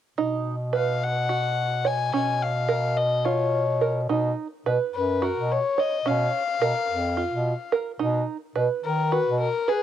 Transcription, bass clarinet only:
0.18 B2
2.14 B2
4.09 B2
4.66 B2
4.94 F#2
5.36 B2
6.05 B2
6.61 B2
6.88 F2
7.30 B2
8.00 B2
8.56 B2
8.84 D#3
9.25 B2

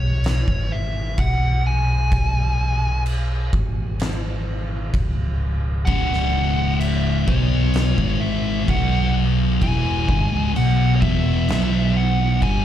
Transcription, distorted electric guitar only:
5.87 C#2 G#2 C#3
7.28 B2 F#3 B3
7.98 G#2 D#3 G#3
8.68 B2 F#3 B3
9.61 E2 B2 E3
10.09 G2 D3
10.32 C#2 G#2
10.55 B2 F#3 B3
11.02 E2 B2 E3
11.49 B2 F#3 B3
12.42 G2 D3 G3

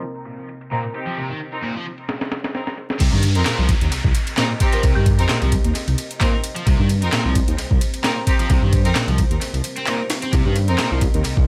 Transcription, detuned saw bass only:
3.00 C2
3.13 G2
3.36 F2
3.58 C2
3.81 D#2
3.91 C2
4.04 C2
4.83 C2
4.96 G2
5.19 F2
5.42 C2
5.64 D#2
5.87 C2
6.67 C2
6.79 G2
7.02 F2
7.25 C2
7.48 D#2
7.58 C2
7.71 C2
8.50 C2
8.62 G2
8.85 F2
9.07 C2
9.30 D#2
9.53 C2
10.33 C2
10.46 G2
10.69 F2
10.91 C2
11.14 D#2
11.25 C2
11.37 C2

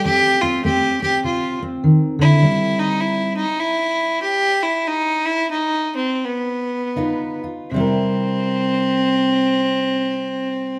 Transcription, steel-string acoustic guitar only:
0.05 F3 C4
0.43 C4
0.65 A3 C4
1.02 C4
1.24 C3
1.62 C4
1.84 D#3
2.19 D3
2.42 C3 G3
6.96 C#3 D#4 F4 B4
7.44 F4
7.71 C3 G3
7.76 E4 G4 A#4

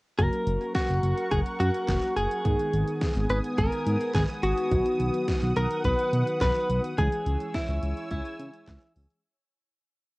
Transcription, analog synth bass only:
0.19 F#1
0.47 F#1
0.89 F#1
1.03 F#1
1.32 F#1
1.60 F#2
1.88 F#1
2.17 F#1
2.45 G#1
2.73 G#1
3.16 G#1
3.30 G#1
3.58 G#1
3.86 G#2
4.15 G#1
4.43 G#1
4.71 B1
5.00 B1
5.42 B1
5.56 B1
5.85 B1
6.13 B2
6.41 B1
6.69 B1
6.98 C#2
7.26 C#2
7.69 C#2
7.83 C#2
8.11 C#2
8.39 C#3
8.67 C#2
8.96 C#2

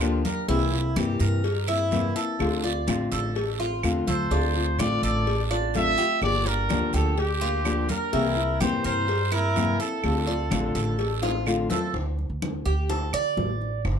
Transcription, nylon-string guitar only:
0.00 D3 F3 A#3 D4 G4
0.25 A#3 D4 G4
0.48 C3 E3 A#3 C4 E4
0.72 A#3 C4 E4
0.96 C3 E3 A#3 C4 E4
1.45 muted nylon-string guitar stroke
1.68 A#3 C4 E4
1.91 C3 E3 A#3 C4 E4
2.16 A#3 C4 E4
2.39 D3 A3 C4 F4
2.63 A3 C4 F4
2.87 D3 A3 C4 F4
3.36 muted nylon-string guitar stroke
3.59 A3 C4 F4
3.83 D3 A3 C4 F4
4.07 A3 C4 F4
4.31 D3 A3 C4 F4
4.55 A3 C4 F4
4.79 D3 A3 C4 F4
5.26 muted nylon-string guitar stroke
5.50 A3 C4 F4
5.74 D3 A3 C4 F4
5.98 A3 C4 F4
6.22 D3 F3 A#3 D4 G4
6.45 A#3 D4 G4
6.69 D3 F3 A#3 D4 G4
7.17 muted nylon-string guitar stroke
7.41 A#3 D4 G4
7.64 D3 F3 A#3 D4 G4
7.89 A#3 D4 G4
8.12 C3 E3 A#3 C4 E4
8.36 A#3 E4
8.60 C3 E3 A#3 C4 E4
9.08 muted nylon-string guitar stroke
9.32 A#3 C4 E4
9.55 C3 E3 A#3 C4 E4
9.80 A#3 C4 E4
10.03 D3 A3 C4 F4
10.26 A3 C4 F4
10.50 D3 A3 C4 F4
10.98 muted nylon-string guitar stroke
11.22 A3 C4 F4
11.46 D3 A3 C4 F4
11.70 A3 C4 F4

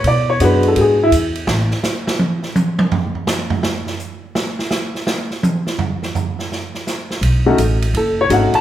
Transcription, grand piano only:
0.07 D5
0.30 C#5
0.41 G#3 B3 D4 F#4 B4
0.68 A4
0.77 G4 G#4
1.03 E4
7.46 A3 C#4 D#4 F#4
7.97 A4
8.21 C#5
8.30 A3 C#4 D#4 F#4 F#5
8.55 A5

